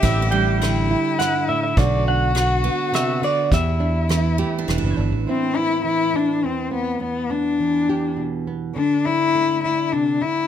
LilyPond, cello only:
\new Staff \with { instrumentName = "Cello" } { \time 3/4 \key e \minor \tempo 4 = 103 g'4 e'2 | fis'2. | e'2~ e'8 r8 | c'8 e'8 e'8 d'8 c'8 b8 |
b8 d'4. r4 | d'8 e'4 e'8 d'8 e'8 | }